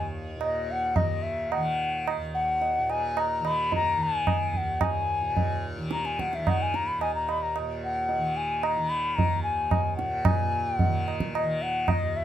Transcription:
Already playing: tanpura D#2 A#2 D#3
0.36 tanpura A#2
0.41 bansuri D#5, tabla na
0.71 bansuri F#5
0.96 tanpura D#3, bansuri D#5, tabla na, tabla ge
1.23 bansuri E5
1.52 bansuri F#5, tabla na
1.57 tanpura D#3
2.08 tabla na
2.17 tanpura D#2
2.34 bansuri F#5
2.62 tabla tin
2.78 tanpura A#2
2.90 bansuri G#5, tabla na
3.17 bansuri A#5, tabla na
3.40 tanpura D#3
3.45 bansuri B5, tabla na
3.72 bansuri A#5, tabla tin, tabla ge
3.97 tanpura D#3
4.03 bansuri G#5
4.27 tabla na, tabla ge
4.54 bansuri F#5, tabla ge
4.60 tanpura D#2
4.81 bansuri G#5, tabla na, tabla ge
5.21 tanpura A#2
5.37 tabla tin, tabla ge
5.77 tanpura D#3
5.91 bansuri A#5, tabla te
6.05 bansuri G#5, tabla te
6.19 bansuri F#5, tabla ke
6.33 bansuri E5, tabla te
6.37 tanpura D#3
6.47 bansuri F#5, tabla na, tabla ge
6.62 bansuri G#5
6.74 bansuri A#5, tabla te
6.87 bansuri B5
6.98 tanpura D#2, bansuri G#5, tabla na
7.15 bansuri A#5
7.29 bansuri B5, tabla na
7.43 bansuri A#5
7.56 tanpura A#2, tabla na
7.84 bansuri F#5
8.09 tabla tin
8.17 tanpura D#3
8.37 bansuri G#5
8.63 bansuri A#5, tabla na
8.76 tanpura D#3
8.89 bansuri B5
9.16 bansuri A#5, tabla tin, tabla ge
9.35 tanpura D#2
9.43 bansuri G#5
9.71 tabla na, tabla ge
9.96 tanpura A#2, bansuri F#5, tabla te
10.25 tanpura A#2, bansuri G#5, tabla na, tabla ge
10.69 bansuri G5
10.79 bansuri F#5, tabla tin, tabla ge
10.84 tanpura D#3
11.08 tabla na
11.20 tabla ke
11.35 bansuri D#5, tabla na
11.44 tanpura D#3
11.62 bansuri F#5
11.88 bansuri D#5, tabla na, tabla ge
12.02 tanpura D#2
12.17 bansuri E5

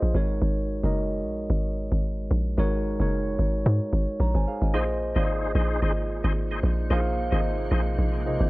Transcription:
Already playing: tine electric piano A#3 F4 G#4 C5 C#5 D#5 F5
0.03 log drum bass A#1
0.14 log drum bass G#1, tine electric piano G#3 D#4 F#4 A#4 C#5
0.42 log drum bass G#1
0.83 log drum bass F#1, tine electric piano G#3 D#4 F#4 A#4 D#5
1.23 log drum bass A#1
1.50 log drum bass G#1
1.92 log drum bass G#1
2.31 log drum bass A#1
2.58 log drum bass G#1, tine electric piano G#3 D#4 F#4 A#4 C#5
3.00 log drum bass F#1, tine electric piano G#3 D#4 F#4 A#4 C#5
3.39 log drum bass G#1
3.66 log drum bass G#2
3.93 log drum bass G#1
4.20 log drum bass A#1, tine electric piano C#5 A#5
4.35 log drum bass G#1, tine electric piano C5 G#5
4.48 tine electric piano G#4 F5
4.62 log drum bass G#1, tine electric piano F#4 D#5
4.74 log drum bass A#1, ambient pad C3 G#3 A#3 D#4, tine electric piano A#3 F4 G#4 C5 D#5, tonewheel organ D#4 G#4 C5
5.16 log drum bass G#1, tine electric piano A#3 F4 G#4 C5 D5, tonewheel organ D#4 G#4 C5
5.24 tine electric piano D#5
5.55 log drum bass A#1, tonewheel organ D#4 G#4 C5
5.82 log drum bass G#1, tonewheel organ D#4 G#4 C5
6.24 log drum bass G#1, tonewheel organ D#4 G#4 C5
6.51 tonewheel organ D#4 G#4 C5
6.63 log drum bass A#1
6.90 log drum bass A#1, tine electric piano A#3 F4 G#4 C5 F5, tonewheel organ D#4 G#4 C5
7.32 log drum bass G#1, tine electric piano A#3 F4 G#4 C5 D#5, tonewheel organ D#4 G#4 C5
7.71 log drum bass A#1, tonewheel organ D#4 G#4 C5
7.98 log drum bass A#1
8.25 tine electric piano A#3 F4 G#4 C5 D#5
8.40 log drum bass G#1

